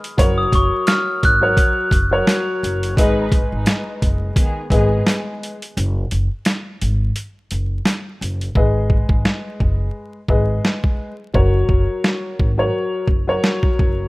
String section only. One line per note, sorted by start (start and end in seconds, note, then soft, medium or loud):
2.98 3.26 G#3 loud
2.98 3.26 D#4 loud
2.98 3.26 B4 loud
3.52 3.99 G#3 medium
3.52 3.99 D#4 medium
3.52 3.99 B4 medium
4.36 4.64 D#3 loud
4.36 4.64 B3 medium
4.36 4.64 G#4 medium
4.72 5.00 D#3 medium
4.72 5.00 B3 medium
4.72 5.00 G#4 medium